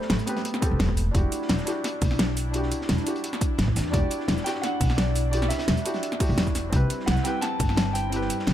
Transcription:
Already playing: A3 B3 C4 G4 A4 B5
0.02 snare
0.10 A1, snare, closed hi-hat
0.19 closed hi-hat, cabasa
0.26 B3 C4 G4 B4, closed hi-hat, cabasa
0.37 snare, closed hi-hat
0.45 closed hi-hat
0.54 snare, cabasa
0.60 B3 C4 G4 A4, kick, closed hi-hat, cabasa
0.71 E1
0.79 E1, snare, closed hi-hat
0.89 kick
0.97 D4 E4, closed hi-hat, open hi-hat, cabasa
1.11 E1 D4 E4, kick, closed hi-hat
1.16 F#4 G4
1.32 closed hi-hat, cabasa
1.42 snare
1.49 E1, snare, closed hi-hat
1.58 snare, cabasa
1.65 D4 E4 F#4 G4, snare, closed hi-hat, cabasa
1.84 snare, closed hi-hat
2.02 B1, kick, closed hi-hat, open hi-hat, cabasa
2.11 snare
2.19 snare, closed hi-hat
2.37 closed hi-hat, open hi-hat, cabasa
2.51 D4 E4, closed hi-hat
2.55 F#4 G4
2.63 snare
2.71 closed hi-hat, cabasa
2.81 snare
2.89 E1, snare, closed hi-hat
2.98 closed hi-hat, cabasa
3.03 D4 E4, closed hi-hat, cabasa
3.08 F#4 G4
3.16 closed hi-hat
3.24 closed hi-hat
3.33 snare, cabasa
3.41 kick, closed hi-hat, cabasa
3.58 A1, snare, closed hi-hat
3.68 kick
3.76 E2, snare, closed hi-hat, open hi-hat, cabasa
3.86 snare
3.91 E1 D4 E4 D5, kick, closed hi-hat
3.95 F#4 G4
4.11 closed hi-hat, cabasa
4.20 snare
4.28 E1, snare, closed hi-hat
4.38 snare, cabasa
4.44 D4 E4 F#4 G4 G5, snare, closed hi-hat, cabasa
4.55 snare
4.62 F#5, snare, closed hi-hat
4.81 B1, kick, closed hi-hat, open hi-hat, cabasa
4.90 snare
4.97 D5, snare, closed hi-hat
5.16 closed hi-hat, open hi-hat, cabasa
5.30 D4 E4 D5, closed hi-hat
5.34 F#4 G4
5.42 snare, cabasa
5.49 E5, snare, closed hi-hat, cabasa
5.59 snare, closed hi-hat
5.68 E1, snare, closed hi-hat
5.77 closed hi-hat, cabasa
5.84 D4 E4 F#4 G4, closed hi-hat, cabasa
5.94 snare, closed hi-hat
6.03 closed hi-hat
6.12 snare, cabasa
6.19 D4 E4 F#4 G4, kick, closed hi-hat, open hi-hat, cabasa
6.29 B1
6.38 E1, snare, closed hi-hat
6.47 kick, cabasa
6.55 snare, closed hi-hat, open hi-hat, cabasa
6.69 C2 G3 C4 E4, kick, closed hi-hat
6.74 G4 B4
6.90 closed hi-hat, cabasa
7.00 snare
7.06 C2 F#5, snare, closed hi-hat
7.17 snare, cabasa
7.24 C4 E4 G4 B4 G5, snare, closed hi-hat, cabasa
7.41 A5, snare, closed hi-hat
7.59 G1, kick, closed hi-hat, open hi-hat, cabasa
7.69 snare
7.77 snare, closed hi-hat
7.93 G5, closed hi-hat, open hi-hat, cabasa
8.09 C4 E4, closed hi-hat
8.14 G4 B4
8.21 snare
8.30 closed hi-hat, cabasa
8.39 snare
8.47 C2, snare, closed hi-hat

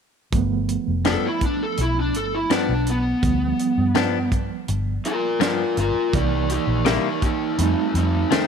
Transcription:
0.32 G1 F3 A3 B3, kick, closed hi-hat
0.69 closed hi-hat
0.87 F1
1.05 G2 F3 B3 D4 A4, snare, closed hi-hat
1.26 E4
1.41 D4, kick, closed hi-hat
1.63 A4
1.77 B1 E4, closed hi-hat
2.00 D4
2.14 G1 A4, closed hi-hat
2.35 E4
2.50 G2 F3 B3 D4, snare, closed hi-hat
2.69 B1
2.87 B3, closed hi-hat
3.23 D2 F3 G3 B3, kick, closed hi-hat
3.59 closed hi-hat
3.78 G2
3.95 G2 F3 B3 D4, snare, closed hi-hat
4.32 kick, closed hi-hat
4.68 G1, closed hi-hat
5.05 F4 A#4, closed hi-hat
5.40 G2 F3 B3 D4 F4 A#4, snare, closed hi-hat
5.77 G1 F4 A#4, closed hi-hat
6.13 C2 E3 A#3 D#4 G4 D5, kick, closed hi-hat
6.49 D#4 G4, closed hi-hat
6.67 A#1
6.85 C3 G3 A#3 D#4 E4 G4, snare, closed hi-hat
7.22 A#3 D#4, kick, closed hi-hat
7.58 F2 G3 A3 C4 D#4, closed hi-hat
7.94 F2 C4 D#4, closed hi-hat
8.31 F2 D#3 A3 C4 D#4, snare, closed hi-hat

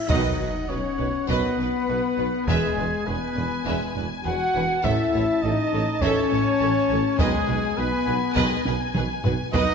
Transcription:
0.08 B1 B2 D#3 F#3 D#4 B4 D#5 F#5, taiko, sub drop
0.40 B1 B2 B4
0.68 B1 B2 C#4 F#4 B4 C#5
0.98 B1 B2 B4
1.28 B1 B2 D#3 F#3 B3 B4 D#5, taiko
1.58 B1 B2 B4
1.88 B1 B2 F#4 B4
2.18 B1 B2 B4
2.47 E1 E2 E3 G#3 G#4 B4 E5 G#5, taiko
2.77 E1 E2 B4
3.05 E1 E2 B3 G#4 B4
3.36 E1 E2 B4
3.65 E1 E2 E3 G#3 B4 E5, taiko
3.95 E1 E2 B4
4.23 E1 E2 F#4 G#4 B4 F#5
4.53 E1 E2 B4
4.83 A1 A2 E3 A3 E4 A4 E5 A5, taiko
5.13 A1 A2 A4 C#5
5.42 A1 A2 D#4 A4 D#5
5.72 A1 A2 A4 C#5
6.00 A1 A2 E3 A3 C#4 A4 C#5 E5, taiko
6.32 A1 A2 A4 C#5
6.60 A1 A2 A4
6.89 A1 A2 A4 C#5
7.19 B1 B2 D#3 G#3 G#4 B4 D#5 G#5, taiko
7.48 B1 B2 B4
7.76 B1 B2 B3 G#4 B4
8.05 B1 B2 B4
8.35 B1 B2 D#3 G#3 B4 D#5, taiko
8.65 B1 B2 B4, taiko high
8.95 B1 B2 G#4 B4, taiko mid
9.24 B1 B2 B4, taiko low
9.53 B1 B2 D#3 B3 D#4 B4 D#5 F#5, taiko

